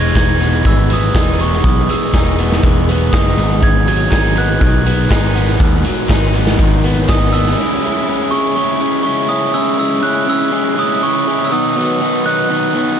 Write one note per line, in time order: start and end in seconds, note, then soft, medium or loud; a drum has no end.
0.00 0.12 E1 medium
0.00 0.64 E3 medium
0.00 1.90 G#3 medium
0.00 3.34 B3 medium
0.00 5.32 G#4 medium
0.00 3.34 G#5 medium
0.00 0.16 G#6 medium
0.15 0.62 E1 medium
0.15 1.15 D#4 medium
0.15 0.67 G#6 loud
0.15 kick loud
0.15 snare loud
0.41 0.91 B3 medium
0.41 closed hi-hat medium
0.65 1.11 G#1 medium
0.65 1.63 E3 medium
0.65 0.89 E6 medium
0.65 kick loud
0.90 1.40 B3 medium
0.90 1.42 D#6 medium
0.90 closed hi-hat medium
1.15 1.61 E1 medium
1.15 2.13 D#4 medium
1.15 kick loud
1.15 snare loud
1.40 2.39 B3 medium
1.40 1.66 C#6 medium
1.40 closed hi-hat medium
1.53 snare soft
1.64 1.87 B1 loud
1.64 2.62 E3 medium
1.64 1.90 D#6 medium
1.64 kick loud
1.89 3.88 G#3 medium
1.89 2.60 E6 medium
1.89 closed hi-hat medium
2.14 2.60 E1 medium
2.14 3.13 D#4 medium
2.14 kick loud
2.14 snare loud
2.39 2.89 B3 medium
2.39 closed hi-hat medium
2.52 snare medium
2.63 3.09 E1 loud
2.63 3.38 E3 medium
2.63 kick loud
2.89 4.37 B3 medium
2.89 closed hi-hat medium
3.12 3.36 F#1 medium
3.12 4.13 D#4 medium
3.12 3.63 D#6 medium
3.12 kick loud
3.12 snare loud
3.37 4.08 G#1 loud
3.37 3.62 G#2 medium
3.37 7.54 B3 medium
3.37 7.54 F#5 medium
3.37 closed hi-hat medium
3.62 4.86 G#2 medium
3.62 3.86 G#6 loud
3.62 kick loud
3.88 5.11 F#3 medium
3.88 4.13 G#6 medium
3.88 closed hi-hat medium
4.11 4.58 G#1 medium
4.11 5.09 D#4 medium
4.11 4.38 G#6 loud
4.11 kick loud
4.11 snare medium
4.11 clap medium
4.36 4.85 B3 medium
4.36 7.05 F#6 medium
4.36 clap medium
4.36 closed hi-hat medium
4.61 5.07 B1 loud
4.61 5.85 D#3 medium
4.61 kick loud
4.86 5.34 B3 medium
4.86 closed hi-hat loud
5.10 5.57 G#1 medium
5.10 6.09 D#4 medium
5.10 kick loud
5.10 snare loud
5.10 clap medium
5.36 6.33 B3 medium
5.36 7.56 A#4 medium
5.36 closed hi-hat loud
5.49 snare soft
5.60 5.83 D#2 loud
5.60 6.84 G#2 medium
5.60 kick loud
5.85 7.09 F#3 medium
5.85 closed hi-hat loud
6.09 6.56 G#1 medium
6.09 7.08 D#4 medium
6.09 kick loud
6.09 snare loud
6.09 clap loud
6.34 6.83 B3 medium
6.34 closed hi-hat medium
6.47 snare medium
6.59 7.05 G#1 loud
6.59 7.58 D#3 medium
6.59 kick loud
6.84 7.33 B3 medium
6.84 closed hi-hat medium
7.08 7.55 G#1 medium
7.08 7.58 D#4 medium
7.08 7.34 D#6 medium
7.08 kick loud
7.08 snare loud
7.08 clap loud
7.33 7.58 B3 medium
7.33 8.34 E6 medium
7.33 closed hi-hat medium
7.46 snare soft
7.58 7.83 C#3 loud
7.58 7.83 G#3 loud
7.58 7.84 C#4 loud
7.58 11.49 C#4 medium
7.58 7.84 E4 loud
7.58 11.49 G#4 medium
7.58 11.49 E5 medium
7.83 8.08 C#3 medium
7.83 8.08 G#3 medium
7.83 8.09 C#4 medium
7.83 8.10 E4 loud
8.08 8.31 C#3 medium
8.08 8.32 G#3 medium
8.08 8.33 C#4 loud
8.08 8.33 E4 medium
8.31 8.55 C#3 medium
8.31 8.55 G#3 medium
8.31 8.56 C#4 medium
8.31 8.57 E4 medium
8.31 8.54 C#6 medium
8.56 8.79 C#3 loud
8.56 8.80 G#3 medium
8.56 8.80 C#4 loud
8.56 8.81 E4 loud
8.56 9.02 C#6 medium
8.80 9.04 C#3 medium
8.80 9.04 G#3 medium
8.80 9.05 C#4 medium
8.80 9.05 E4 medium
9.03 9.28 C#3 medium
9.03 9.28 G#3 medium
9.03 9.29 C#4 loud
9.03 9.29 E4 medium
9.03 9.30 C#6 medium
9.29 9.52 C#3 medium
9.29 9.53 G#3 medium
9.29 9.53 C#4 loud
9.29 9.54 E4 medium
9.29 9.52 D#6 medium
9.53 9.76 C#3 loud
9.53 9.77 G#3 loud
9.53 9.77 C#4 loud
9.53 9.78 E4 loud
9.53 9.77 E6 loud
9.77 10.01 C#3 medium
9.77 10.02 G#3 loud
9.77 10.03 C#4 loud
9.77 10.03 E4 medium
9.77 10.05 E6 loud
10.02 10.26 C#3 medium
10.02 10.27 G#3 loud
10.02 10.27 C#4 loud
10.02 10.28 E4 medium
10.02 10.29 F#6 loud
10.27 10.50 C#3 medium
10.27 10.51 G#3 medium
10.27 10.52 C#4 medium
10.27 10.52 E4 medium
10.27 10.80 E6 loud
10.52 10.75 C#3 medium
10.52 10.76 G#3 loud
10.52 10.77 C#4 loud
10.52 10.77 E4 loud
10.76 11.01 C#3 medium
10.76 11.02 G#3 medium
10.76 11.02 C#4 loud
10.76 11.03 E4 loud
10.76 10.96 D#6 medium
10.97 11.03 D#6 medium
11.03 11.26 C#3 medium
11.03 11.26 G#3 loud
11.03 11.27 C#4 medium
11.03 11.27 E4 medium
11.03 11.46 C#6 medium
11.27 11.50 C#3 medium
11.27 11.51 G#3 loud
11.27 11.51 C#4 loud
11.27 11.51 E4 loud
11.45 11.52 E6 medium
11.51 11.76 B2 loud
11.51 11.75 D#3 loud
11.51 11.77 F#3 loud
11.51 11.78 B3 loud
11.51 13.00 D#4 medium
11.51 11.78 D#4 loud
11.51 13.00 B4 medium
11.51 13.00 F#5 medium
11.51 12.28 D#6 loud
11.76 12.00 B2 medium
11.76 12.01 D#3 medium
11.76 12.01 F#3 loud
11.76 12.02 B3 loud
11.76 12.02 D#4 medium
12.01 12.24 B2 medium
12.01 12.24 D#3 medium
12.01 12.25 F#3 medium
12.01 12.26 B3 loud
12.01 12.26 D#4 loud
12.25 12.48 B2 medium
12.25 12.49 D#3 medium
12.25 12.49 F#3 medium
12.25 12.50 B3 medium
12.25 12.50 D#4 medium
12.25 13.00 F#6 loud
12.49 12.74 B2 medium
12.49 12.74 D#3 loud
12.49 12.74 F#3 loud
12.49 12.75 B3 loud
12.49 12.75 D#4 loud
12.75 12.98 B2 medium
12.75 12.98 D#3 medium
12.75 12.99 F#3 medium
12.75 13.00 B3 loud
12.75 13.00 D#4 loud